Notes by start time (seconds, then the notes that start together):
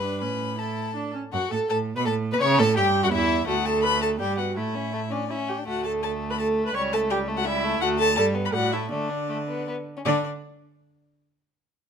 Already playing: G2 B4 B5
0.02 D4
0.21 A2 C#4 B4 B5
0.58 E4 A4 A5
0.96 D4
1.15 C#4
1.32 F#2 F#4 F#5
1.51 A2 A4 A5
1.69 A2 A4 A5
1.96 B2 B4 B5
2.05 A2 A4 A5
2.31 B2 B4 B5
2.40 C#3 C#5 C#6
2.58 A2 A4 A5
2.76 G2 G4 G5
3.03 F#2 F#4 F#5
3.12 E2 E4 E5
3.47 D2 A3 F#4 F#5
3.65 A3 A4 A5
3.83 A3 B4 B5
4.02 A3 A4 A5
4.20 G2 G3 G4 G5
4.37 B3 F#4 F#5
4.56 A2 A3 E4 E5
4.75 C#4
4.93 A3
5.11 C#4 D4 D5
5.29 C#4 E4 E5
5.49 G4 G5
5.58 D4
5.67 D2 A3 F#4 F#5
5.84 A3 A4 A5
6.03 A3 A4 A5
6.22 A3
6.30 B4 B5
6.39 A3 A4 A5
6.58 A3
6.66 B4 B5
6.74 C#2 G3 C#5 C#6
6.93 A3 A4 A5
7.10 G3 G4 G5
7.28 A3
7.37 F#4 F#5
7.45 G3 E4 E5
7.64 A3
7.80 D2 A3 F#4 F#5
7.98 A3 A4 A5
8.16 G2 G3 A4 A5
8.34 B3
8.45 B4 B5
8.53 A2 G3 F#4 F#5
8.72 A3 E4 E5
8.91 D3 A3 D4 D5
9.10 D4
9.29 A3
9.48 B3
9.67 B3
9.97 C#4
10.05 D3 D4 D5